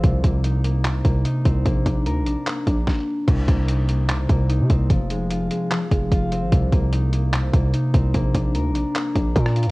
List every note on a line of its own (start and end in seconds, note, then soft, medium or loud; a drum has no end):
0.00 0.23 C2 loud
0.00 0.83 C3 medium
0.00 0.23 A#3 medium
0.00 1.45 C4 medium
0.00 0.44 D#4 loud
0.00 2.15 F4 medium
0.00 kick loud
0.00 closed hi-hat medium
0.24 1.02 C2 loud
0.24 0.64 A#3 medium
0.24 kick loud
0.24 closed hi-hat medium
0.44 1.25 D#4 medium
0.44 closed hi-hat medium
0.64 1.04 A#3 medium
0.64 closed hi-hat medium
0.85 1.71 C3 medium
0.85 cross-stick medium
0.85 clap loud
0.85 closed hi-hat medium
1.05 1.24 C2 loud
1.05 1.65 A#3 medium
1.05 kick medium
1.05 closed hi-hat medium
1.25 1.92 D#4 medium
1.25 closed hi-hat medium
1.45 1.65 C2 loud
1.45 4.45 C4 medium
1.45 kick medium
1.45 closed hi-hat medium
1.66 1.85 A#1 loud
1.66 2.46 A#3 loud
1.66 kick loud
1.66 closed hi-hat medium
1.86 2.08 A#1 loud
1.86 2.26 D4 medium
1.86 kick medium
1.86 closed hi-hat medium
2.06 2.23 D2 loud
2.06 4.18 A#4 loud
2.06 closed hi-hat medium
2.21 2.36 A#1 loud
2.26 2.67 D4 medium
2.26 closed hi-hat medium
2.47 3.48 A#3 medium
2.47 clap loud
2.47 closed hi-hat medium
2.67 2.86 A#1 loud
2.67 3.74 D4 medium
2.67 kick medium
2.67 closed hi-hat medium
2.87 kick loud
2.87 snare medium
3.28 3.47 C2 loud
3.28 4.08 C3 loud
3.28 kick loud
3.28 closed hi-hat medium
3.28 crash loud
3.48 4.26 C2 loud
3.48 3.88 A#3 medium
3.48 kick loud
3.48 closed hi-hat medium
3.68 4.49 D#4 medium
3.68 closed hi-hat medium
3.89 4.29 A#3 medium
3.89 closed hi-hat medium
4.09 4.95 C3 medium
4.09 cross-stick medium
4.09 clap loud
4.09 closed hi-hat medium
4.29 4.61 C2 loud
4.29 6.72 A#3 medium
4.29 kick medium
4.29 closed hi-hat medium
4.49 6.92 D#4 medium
4.49 closed hi-hat medium
4.60 4.69 C3 loud
4.70 4.89 C2 loud
4.70 6.31 C4 medium
4.70 kick loud
4.70 closed hi-hat medium
4.90 5.48 F1 loud
4.90 5.70 F3 medium
4.90 kick loud
4.90 closed hi-hat medium
5.10 5.50 G#3 medium
5.10 closed hi-hat medium
5.30 6.11 F4 medium
5.30 closed hi-hat medium
5.51 5.90 G#3 medium
5.51 closed hi-hat medium
5.71 6.57 F3 medium
5.71 cross-stick medium
5.71 clap loud
5.71 closed hi-hat medium
5.91 6.11 F1 loud
5.91 6.57 G#3 medium
5.91 kick medium
5.91 closed hi-hat medium
6.12 6.44 F1 loud
6.12 8.64 F4 loud
6.12 kick loud
6.12 closed hi-hat medium
6.32 7.94 C4 medium
6.32 closed hi-hat medium
6.42 6.52 G#1 loud
6.52 6.72 C2 loud
6.52 7.32 C3 medium
6.52 kick loud
6.52 closed hi-hat medium
6.72 7.50 C2 loud
6.72 7.12 A#3 medium
6.72 kick loud
6.72 closed hi-hat medium
6.93 7.73 D#4 medium
6.93 closed hi-hat medium
7.13 7.53 A#3 medium
7.13 closed hi-hat medium
7.33 8.19 C3 medium
7.33 cross-stick medium
7.33 clap loud
7.33 closed hi-hat medium
7.53 7.73 C2 loud
7.53 8.14 A#3 medium
7.53 kick loud
7.53 closed hi-hat medium
7.74 8.40 D#4 medium
7.74 closed hi-hat medium
7.94 8.13 C2 loud
7.94 9.71 C4 medium
7.94 kick medium
7.94 closed hi-hat medium
8.14 8.34 A#1 loud
8.14 8.95 A#3 loud
8.14 kick loud
8.14 closed hi-hat medium
8.34 8.56 A#1 loud
8.34 8.75 D4 medium
8.34 kick loud
8.34 closed hi-hat medium
8.55 8.72 D2 loud
8.55 9.36 A#4 loud
8.55 closed hi-hat medium
8.70 8.85 A#1 loud
8.75 9.15 D4 medium
8.75 closed hi-hat medium
8.95 9.71 A#3 medium
8.95 clap loud
8.95 closed hi-hat medium
9.16 9.35 A#1 loud
9.16 9.71 D4 medium
9.16 kick medium
9.16 closed hi-hat medium
9.36 9.68 A#2 loud
9.36 9.71 A#4 loud
9.36 kick loud
9.36 closed hi-hat medium
9.46 cross-stick loud
9.56 9.71 F4 medium
9.56 closed hi-hat medium
9.63 9.71 F2 loud
9.63 closed hi-hat medium